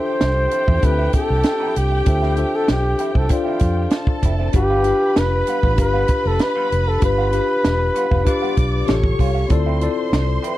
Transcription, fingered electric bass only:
0.22 0.46 C2 medium
0.68 0.80 E2 medium
0.83 1.07 D2 medium
1.30 1.42 C2 medium
1.77 2.00 C2 medium
2.07 2.43 D2 medium
2.69 2.93 B1 medium
3.16 3.28 C2 medium
3.61 3.86 F2 medium
4.23 4.48 F1 medium
4.54 4.91 G1 medium
5.17 5.41 F1 medium
5.64 5.76 A1 medium
5.78 6.03 G1 medium
6.25 6.37 F1 medium
6.72 6.96 F1 medium
7.02 7.39 G1 medium
7.65 7.89 E1 medium
8.12 8.23 F1 medium
8.57 8.82 B1 medium
8.89 9.13 A1 medium
9.20 9.44 C2 medium
9.51 9.87 D2 medium
10.13 10.37 C2 medium

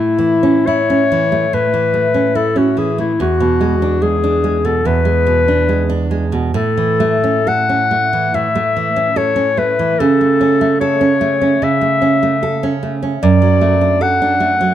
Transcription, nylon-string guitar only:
0.00 1.49 A2 medium
0.00 0.32 A3 soft
0.19 0.57 E3 medium
0.43 0.80 C#4 medium
0.67 1.02 E4 medium
0.90 1.24 C#4 medium
1.12 1.45 E3 medium
1.32 1.65 A3 medium
1.53 3.16 A2 medium
1.74 2.07 E3 soft
1.94 2.27 A3 soft
2.14 2.48 C#4 soft
2.35 2.69 E4 medium
2.56 2.90 C#4 soft
2.77 3.11 E3 soft
2.98 3.20 A3 medium
3.20 4.82 E2 medium
3.40 3.74 B2 soft
3.61 3.94 G#3 medium
3.82 4.15 D4 medium
4.02 4.36 G#3 soft
4.24 4.57 D4 medium
4.44 4.78 G#3 medium
4.65 4.99 B2 soft
4.85 6.52 E2 medium
5.05 5.40 G#3 medium
5.27 5.61 B2 medium
5.48 5.83 D4 medium
5.69 6.04 G#3 soft
5.89 6.25 D4 medium
6.11 6.46 G#3 medium
6.32 6.54 B2 medium
6.54 8.30 A2 medium
6.77 7.15 E3 soft
7.00 7.38 A3 medium
7.24 7.61 C#4 medium
7.47 7.83 A4 medium
7.69 8.04 C#4 medium
7.91 8.25 A3 medium
8.13 8.47 E3 medium
8.34 9.95 A2 medium
8.55 8.88 A3 medium
8.77 9.09 E3 medium
8.96 9.28 C#4 medium
9.16 9.49 A4 medium
9.36 9.69 C#4 medium
9.57 9.91 A3 medium
9.79 9.99 E3 soft
10.00 11.58 C#3 medium
10.21 10.53 A3 soft
10.41 10.73 C#4 medium
10.61 10.94 A3 medium
10.81 11.14 A4 medium
11.01 11.33 C#4 medium
11.21 11.53 A3 medium
11.41 11.73 C#4 medium
11.62 13.17 C#3 medium
11.81 12.13 A3 soft
12.02 12.33 C#4 medium
12.23 12.54 A3 medium
12.43 12.74 A4 medium
12.63 12.94 C#4 medium
12.83 13.14 A3 soft
13.03 13.22 C#4 medium
13.23 14.74 F#2 medium
13.42 13.73 F#3 medium
13.61 13.93 A3 medium
13.81 14.13 D4 medium
14.01 14.33 A4 medium
14.22 14.54 D4 medium
14.40 14.73 A3 medium
14.61 14.74 F#3 medium

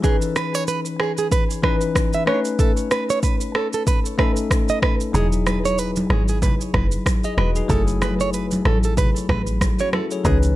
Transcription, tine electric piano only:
0.02 1.24 E3 medium
0.02 1.25 C#4 medium
0.02 1.25 D#4 medium
0.02 1.25 B4 loud
1.62 2.27 E3 medium
1.62 2.26 C#4 medium
1.62 2.28 D#4 medium
1.62 2.27 B4 medium
2.26 3.48 A3 medium
2.26 3.48 C#4 medium
2.26 2.35 D4 medium
2.26 3.49 B4 medium
2.34 3.52 D#4 medium
4.18 5.09 A3 medium
4.18 5.09 C#4 medium
4.18 5.10 D#4 medium
4.18 5.10 A4 medium
5.13 6.35 F#3 medium
5.13 6.35 D#4 medium
5.13 6.36 E4 medium
5.13 6.36 G#4 medium
7.24 7.37 G#4 medium
7.24 7.37 D#5 medium
7.38 7.56 F#4 medium
7.38 7.55 B4 medium
7.56 7.87 D#4 medium
7.56 7.70 G#4 medium
7.68 8.90 F#3 medium
7.68 8.90 A3 medium
7.68 8.91 E4 medium
7.68 8.91 G#4 medium
9.80 9.93 C#4 medium
9.80 9.92 F#4 medium
9.93 10.11 E4 medium
9.93 10.11 A4 medium
10.12 10.42 G#4 medium
10.12 10.42 C#5 medium
10.24 10.56 E3 medium
10.24 10.56 C#4 medium
10.24 10.56 D#4 medium
10.24 10.56 B4 loud

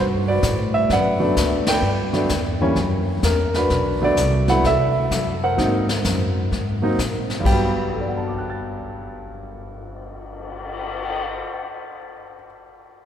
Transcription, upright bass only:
0.00 0.41 G2 medium
0.43 0.88 A2 medium
0.89 1.35 F#2 medium
1.37 1.81 D2 medium
1.82 2.28 G2 medium
2.29 2.75 E2 medium
2.76 3.22 F#2 medium
3.23 3.69 E2 medium
3.70 4.16 B1 medium
4.17 4.63 C2 medium
4.64 5.09 D2 medium
5.11 5.56 F#2 medium
5.58 6.04 G#2 medium
6.04 6.50 F#2 medium
6.52 6.97 G#2 medium
6.99 7.44 A#2 medium
7.45 11.41 G1 medium

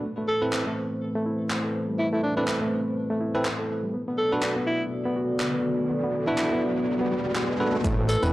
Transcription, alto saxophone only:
0.28 0.44 A4 medium
1.99 2.08 E4 medium
2.13 2.20 E4 medium
2.23 2.32 D4 medium
2.36 2.44 D4 medium
4.18 4.34 A4 medium
4.67 4.83 E4 medium
6.27 6.62 E4 medium
8.09 8.25 A4 medium

